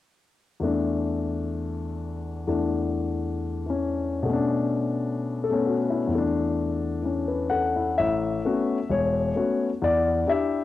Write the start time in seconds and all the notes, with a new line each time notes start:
0.60 E2 E3 A3
0.64 D4
2.47 E2 E3 A3 D4
3.66 E3 C#4
4.23 B2 A3
4.30 C#4 D4
5.44 A4
5.50 A3 B3 C#4
5.66 F#4
5.90 E4
6.07 E2 E3
6.15 A3 D4
7.02 E3 C#4
7.28 B4
7.50 A4 F#5
7.76 E4
7.98 A1 E5
8.45 A3 B3 C#4 F#4
8.89 E1 C#5
9.36 A3 B3 C#4 F#4
9.82 E2 D5
10.27 D4 E4 G4 E5